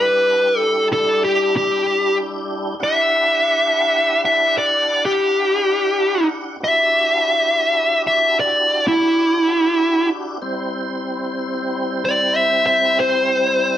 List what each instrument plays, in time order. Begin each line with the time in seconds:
Already playing: tonewheel organ G3 D4 E4 G4, lead electric guitar B4
0.58 lead electric guitar A4
0.93 lead electric guitar A4
1.25 lead electric guitar G4
1.57 lead electric guitar G4
2.79 tonewheel organ D4 E4 G4 F#5, lead electric guitar E5
4.25 lead electric guitar E5
4.58 lead electric guitar D5
5.05 lead electric guitar G4
6.60 tonewheel organ D4 E4 F#4 G4, lead electric guitar E5
8.07 lead electric guitar E5
8.40 lead electric guitar D5
8.88 lead electric guitar E4
10.42 tonewheel organ G3 C4 E4 C5
12.05 lead electric guitar D5
12.36 lead electric guitar E5
12.66 lead electric guitar E5
13.00 lead electric guitar C5